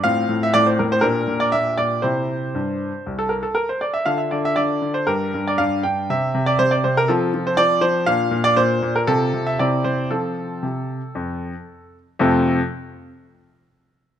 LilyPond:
<<
  \new Staff \with { instrumentName = "Grand piano" } { \time 4/4 \key f \major \tempo 4 = 118 << { f''8. e''16 d''16 c''16 bes'16 c''16 bes'8. d''16 e''8 d''8 | c''2~ c''16 a'16 bes'16 a'16 bes'16 c''16 d''16 e''16 | f''16 e''16 d''16 e''16 d''8. c''16 bes'8. d''16 f''8 g''8 | e''8. d''16 c''16 d''16 c''16 bes'16 a'8. c''16 d''8 c''8 |
f''8. d''16 c''8. bes'16 a'8. e''16 d''8 c''8 | a'2.~ a'8 r8 | <f, c a c' f' a'>8 r2. r8 | } \\ { <c' f'>2 <d' g'>2 | r1 | <d' f'>2 <d' g'>2 | <c' g'>2 <c' f'>2 |
<d' f'>2 <c' f'>4 <c' e'>4 | r1 | r1 | } >> }
  \new Staff \with { instrumentName = "Grand piano" } { \clef bass \time 4/4 \key f \major a,8 a,8 a,8 a,8 bes,8 bes,8 bes,8 bes,8 | <c e' g'>4 g,4 c,4 r4 | d8 d8 d8 d8 g,8 g,8 g,8 g,8 | c8 c8 c8 c8 f8 f8 f8 f8 |
bes,8 bes,8 bes,8 bes,8 c8 c8 c8 c8 | <f c' f'>4 c4 f,4 r4 | r1 | }
>>